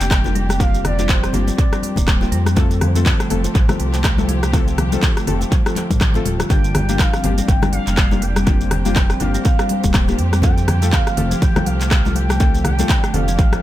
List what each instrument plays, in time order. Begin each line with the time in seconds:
Already playing: string section G3 D4 G4, synth stab A#3 D4 F4 G4, analog synth lead G5
0.00 analog synth bass F1, marimba A#3, clap, closed hi-hat, shaker
0.11 marimba G3, kick, cross-stick, clap, closed hi-hat, shaker
0.24 synth stab A#3 D4 F4 G4, muted conga, high conga, shaker
0.35 marimba G3, open hi-hat, high conga
0.49 marimba C4, cross-stick, closed hi-hat, high conga, shaker
0.60 marimba G3, synth stab A#3 D4 F4 G4, string section C4, analog synth lead F5, kick, closed hi-hat, muted conga, low conga, shaker
0.74 closed hi-hat, shaker
0.84 marimba G3, analog synth lead D5, cross-stick, open hi-hat, low conga
0.99 marimba F3, synth stab A#3 D4 F4 G4, closed hi-hat, muted conga, high conga, shaker
1.09 analog synth lead C5, kick, clap, closed hi-hat, shaker
1.23 marimba C4, cross-stick, closed hi-hat, shaker
1.33 analog synth bass G1, marimba G3, synth stab A#3 D4 F4 G4, analog synth lead D5, open hi-hat, low conga
1.48 closed hi-hat, muted conga, shaker
1.58 marimba G3, kick, closed hi-hat, high conga, shaker
1.72 marimba G3, synth stab A#3 D4 F4 G4, cross-stick, closed hi-hat, shaker
1.83 open hi-hat, muted conga, high conga
1.96 analog synth bass D1, marimba A#3, kick, closed hi-hat, high conga, shaker
2.07 marimba G3, kick, cross-stick, clap, closed hi-hat, shaker
2.21 synth stab A#3 D4 F4 G4, muted conga, shaker
2.32 analog synth bass F2, marimba G3, open hi-hat
2.46 marimba C4, cross-stick, closed hi-hat, high conga, shaker
2.56 marimba F3, string section F3 G4, synth stab A3 C4 F4 A4, kick, closed hi-hat, muted conga, low conga, shaker
2.71 closed hi-hat, shaker
2.81 marimba F3, cross-stick, open hi-hat, low conga
2.95 marimba D3, synth stab A3 C4 F4 A4, closed hi-hat, muted conga, high conga, shaker
3.06 kick, clap, closed hi-hat, shaker
3.20 marimba A3, cross-stick, closed hi-hat, shaker
3.30 analog synth bass F1, marimba F3, synth stab A3 C4 F4 A4, open hi-hat, low conga
3.44 closed hi-hat, muted conga, shaker
3.55 analog synth bass A1, marimba F3, kick, closed hi-hat, shaker
3.69 marimba F3, synth stab A3 C4 F4 A4, cross-stick, closed hi-hat, high conga, low conga, shaker
3.79 analog synth bass C2, open hi-hat, muted conga
3.94 marimba A3, clap, closed hi-hat, shaker
4.04 marimba F3, kick, cross-stick, clap, closed hi-hat, shaker
4.18 synth stab A3 C4 F4 A4, muted conga, high conga, shaker
4.29 marimba F3, open hi-hat, high conga
4.43 marimba A3, cross-stick, closed hi-hat, high conga, shaker
4.53 marimba F3, synth stab A3 C4 F4 A4, kick, closed hi-hat, muted conga, low conga, shaker
4.68 closed hi-hat, shaker
4.78 marimba F3, cross-stick, open hi-hat, low conga
4.92 marimba D3, synth stab A3 C4 F4 A4, closed hi-hat, muted conga, high conga, shaker
5.03 kick, clap, closed hi-hat, shaker
5.17 marimba A3, cross-stick, closed hi-hat, shaker
5.27 analog synth bass F1, marimba F3, synth stab A3 C4 F4 A4, open hi-hat, low conga
5.41 closed hi-hat, muted conga, shaker
5.52 marimba F3, kick, closed hi-hat, high conga, shaker
5.66 marimba F3, synth stab A3 C4 F4 A4, cross-stick, closed hi-hat, shaker
5.76 clap, open hi-hat, muted conga, high conga
5.90 analog synth bass A1, marimba D3, kick, closed hi-hat, high conga, shaker
6.01 marimba F3, kick, cross-stick, clap, closed hi-hat, shaker
6.14 synth stab A3 C4 F4 A4, closed hi-hat, muted conga, shaker
6.25 analog synth bass D1, marimba F4, open hi-hat, high conga
6.39 marimba D3, cross-stick, closed hi-hat, high conga, shaker
6.50 analog synth bass G1, string section G3 D4 G4, marimba G3, synth stab A#3 D4 F4 G4, analog synth lead G5, kick, closed hi-hat, muted conga, low conga, shaker
6.64 closed hi-hat, shaker
6.74 marimba G3, cross-stick, open hi-hat, low conga
6.89 marimba F3, synth stab A#3 D4 F4 G4, closed hi-hat, muted conga, high conga, shaker
6.99 analog synth lead F5, kick, clap, closed hi-hat, shaker
7.13 marimba C4, cross-stick, closed hi-hat, shaker
7.24 analog synth bass G1, marimba G3, synth stab A#3 D4 F4 G4, open hi-hat, low conga
7.38 marimba G3, closed hi-hat, muted conga, shaker
7.48 analog synth bass G1, marimba G3, analog synth lead G5, kick, closed hi-hat, shaker
7.62 marimba G3, synth stab A#3 D4 F4 G4, cross-stick, closed hi-hat, high conga, low conga, shaker
7.73 analog synth lead F5, open hi-hat, muted conga
7.87 analog synth bass F1, marimba A#3, clap, closed hi-hat, shaker
7.97 marimba G3, kick, cross-stick, clap, closed hi-hat, shaker
8.11 synth stab A#3 D4 F4 G4, muted conga, high conga, shaker
8.22 analog synth lead G5, open hi-hat, high conga
8.36 marimba C4, cross-stick, closed hi-hat, high conga, shaker
8.46 marimba G3, synth stab A#3 D4 F4 G4, string section C4, kick, closed hi-hat, muted conga, low conga, shaker
8.61 closed hi-hat, shaker
8.71 marimba G3, analog synth lead G5, cross-stick, open hi-hat, low conga
8.85 marimba F3, synth stab A#3 D4 F4 G4, closed hi-hat, muted conga, high conga, shaker
8.96 kick, clap, closed hi-hat, shaker
9.10 marimba C4, cross-stick, closed hi-hat, shaker
9.20 analog synth bass G1, marimba G3, synth stab A#3 D4 F4 G4, analog synth lead F5, open hi-hat, low conga
9.34 marimba G3, closed hi-hat, muted conga, shaker
9.45 kick, closed hi-hat, high conga, shaker
9.59 marimba G3, synth stab A#3 D4 F4 G4, cross-stick, closed hi-hat, shaker
9.69 open hi-hat, muted conga, high conga
9.84 analog synth bass D1, marimba A#3, kick, closed hi-hat, high conga, shaker
9.94 marimba G3, kick, cross-stick, clap, closed hi-hat, shaker
10.08 synth stab A#3 D4 F4 G4, muted conga, shaker
10.19 analog synth bass F2, open hi-hat
10.33 marimba C4, cross-stick, closed hi-hat, high conga, shaker
10.42 string section F3, marimba F3, synth stab A3 C4 F4 A4, analog synth lead G5, kick, closed hi-hat, muted conga, low conga, shaker
10.58 closed hi-hat, shaker
10.68 marimba F3, cross-stick, open hi-hat, low conga
10.82 marimba D3, synth stab A3 C4 F4 A4, closed hi-hat, muted conga, high conga, shaker
10.93 analog synth lead F5, kick, clap, closed hi-hat, shaker
11.07 marimba A3, cross-stick, closed hi-hat, shaker
11.17 analog synth bass F1, marimba F3, synth stab A3 C4 F4 A4, open hi-hat, low conga
11.31 marimba F3, closed hi-hat, muted conga, shaker
11.41 analog synth bass A1, analog synth lead G5, kick, closed hi-hat, shaker
11.56 marimba F3, synth stab A3 C4 F4 A4, cross-stick, closed hi-hat, high conga, low conga, shaker
11.66 analog synth bass C2, analog synth lead F5, open hi-hat, muted conga
11.81 marimba A3, clap, closed hi-hat, shaker
11.91 marimba F3, kick, cross-stick, clap, closed hi-hat, shaker
12.05 synth stab A3 C4 F4 A4, muted conga, high conga, shaker
12.15 analog synth lead G5, open hi-hat, high conga
12.29 marimba A3, cross-stick, closed hi-hat, high conga, shaker
12.40 marimba F3, synth stab A3 C4 F4 A4, string section D4, kick, closed hi-hat, muted conga, low conga, shaker
12.55 closed hi-hat, shaker
12.64 marimba F3, analog synth lead G5, cross-stick, open hi-hat, low conga
12.79 marimba D3, synth stab A3 C4 F4 A4, closed hi-hat, muted conga, high conga, shaker
12.89 kick, clap, closed hi-hat, shaker
13.03 marimba A3, cross-stick, closed hi-hat, shaker
13.13 analog synth bass F1, marimba F3, synth stab A3 C4 F4 A4, analog synth lead F5, open hi-hat, low conga
13.28 marimba F3, closed hi-hat, muted conga, shaker
13.39 analog synth bass A1, kick, closed hi-hat, high conga, shaker
13.52 marimba F3, synth stab A3 C4 F4 A4, cross-stick, closed hi-hat, shaker